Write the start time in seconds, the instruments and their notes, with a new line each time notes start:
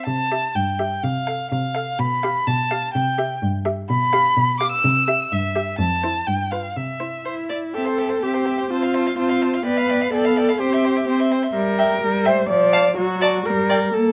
0.06 cello C3, violin A5
0.32 viola G4, violin E5
0.55 cello G2, violin G5
0.79 viola G4, violin E5
1.04 cello C3, violin F5
1.27 viola A4, violin F5
1.51 cello C3, violin F5
1.75 viola A4, violin F5
1.99 cello B2, violin B5
2.23 viola G4, violin F5
2.47 cello B2, violin A5
2.71 viola G4, violin F5
2.94 cello C3, violin G5
3.18 viola G4, violin E5
3.42 cello G2
3.65 viola G4, violin E5
3.89 cello B2, violin B5
4.13 viola G4, violin F5
4.37 cello B2
4.60 viola G4, violin F5 D6
4.72 violin E6
4.84 cello C3
5.08 viola G4, violin E5
5.32 cello G2, violin E5
5.56 viola G4, violin E5
5.79 cello F2, violin A5
6.03 viola E4, violin C5
6.27 cello G2, violin G5
6.52 viola F4, violin B4 F5
6.76 cello C3, violin E5
7.00 viola E4, violin C5
7.25 cello E4, violin C5
7.49 viola E4, violin D5
7.73 viola C4, violin G4 E5, cello A4
7.85 violin C5 G5
7.98 violin G4 E5
8.09 violin C5 G5
8.22 viola C4, violin G4 E5, cello G4
8.34 violin C5 G5
8.46 violin G4 E5
8.58 violin C5 G5
8.70 viola C4, cello F4, violin C5 A5
8.83 violin F5 C6
8.94 violin C5 A5
9.06 violin F5 C6
9.17 viola C4, cello F4, violin C5 A5
9.29 violin F5 C6
9.42 violin C5 A5
9.54 violin F5 C6
9.65 viola B3, cello B4, violin D5 G5
9.77 violin F5 B5
9.90 violin D5 G5
10.02 violin F5 B5
10.13 viola B3, cello A4, violin D5 G5
10.25 violin F5 B5
10.37 violin D5 G5
10.48 violin F5 B5
10.60 viola C4, cello G4, violin C5 G5
10.73 violin E5 C6
10.85 violin C5 G5
10.96 violin E5 C6
11.08 viola C4, violin C5 G5
11.20 violin E5 C6
11.32 violin C5 G5
11.43 violin E5 C6
11.55 viola G3, cello A#4
11.78 violin E5 G5
12.02 viola G3
12.25 cello C5, violin E5 G5
12.49 viola F3, cello D5
12.73 violin F5 A5
12.97 viola F#3, cello F#4
13.21 violin D5 A5
13.45 viola G3, cello A#4
13.69 violin D5 G5
13.94 viola A#3, cello A4